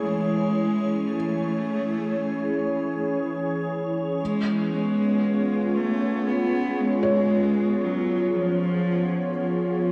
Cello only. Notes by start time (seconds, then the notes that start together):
0.02 G#3
1.07 A3
4.22 G#3
4.74 G#3
5.76 A3
6.28 B3
6.80 G#3
7.84 F#3
8.37 F3
9.40 F3